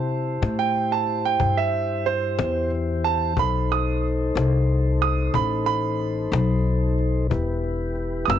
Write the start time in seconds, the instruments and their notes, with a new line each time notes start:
Already playing: upright bass C3, tonewheel organ E4 G4 C5, upright piano A5
0.09 cajon slap
0.42 upright bass A2, cajon slap
0.59 upright piano G5
0.74 cajon slap
0.92 upright piano A5
1.06 cajon slap
1.25 upright piano G5
1.40 upright bass G2, cajon bass
1.57 upright piano E5
1.72 cajon slap
2.05 upright piano C5, cajon slap
2.39 upright bass E2, cajon slap
2.71 cajon slap
3.04 upright piano A5, cajon slap
3.37 upright bass B1, tonewheel organ D#4 A4 C5, upright piano B5, cajon bass
3.70 upright piano D#6, cajon slap
4.03 cajon slap
4.35 upright bass C2, cajon slap
4.69 cajon slap
5.01 upright piano D#6, cajon slap
5.34 upright bass A1, upright piano B5, cajon bass
5.66 upright piano B5, cajon slap
6.00 cajon slap
6.32 upright bass B1, cajon slap
6.65 cajon slap
6.98 cajon slap
7.30 upright bass E1, tonewheel organ E4 G4 B4, cajon bass
7.64 cajon slap
7.95 cajon slap
8.25 upright bass F#1, upright piano D#6
8.30 upright piano E6, cajon slap